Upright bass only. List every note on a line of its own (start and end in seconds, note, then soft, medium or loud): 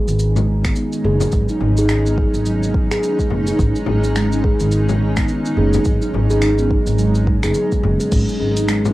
0.08 0.69 G#1 medium
1.04 1.24 F#1 medium
1.33 1.44 G#1 medium
1.61 2.25 G#1 medium
2.34 2.96 G#1 medium
3.30 3.50 F#1 medium
3.59 3.70 G#1 loud
3.88 4.51 G#1 medium
4.61 5.22 G#1 medium
5.57 5.77 F#1 medium
5.86 5.96 G#1 medium
6.14 6.77 G#1 medium
6.87 7.28 G#1 medium
7.27 7.38 G#2 medium
7.44 7.51 F#1 medium
7.83 7.94 F#1 loud
8.12 8.23 G#1 medium
8.40 8.93 G#1 medium